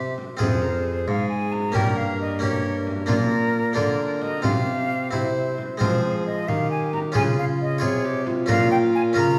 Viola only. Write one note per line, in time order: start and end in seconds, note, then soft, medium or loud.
0.00 0.20 G4 soft
0.40 0.63 G#4 medium
0.62 0.84 A#4 medium
0.84 1.76 G#4 medium
1.75 2.41 A#4 medium
2.41 3.07 A#4 medium
3.08 3.72 A#4 medium
3.76 4.46 A#4 medium
4.44 5.15 G4 medium
5.13 5.61 E4 medium
5.81 6.44 G#4 medium
6.49 7.17 G4 medium
7.15 7.84 F4 medium
7.82 8.06 G#4 medium
8.04 8.28 G4 medium
8.27 9.39 F4 medium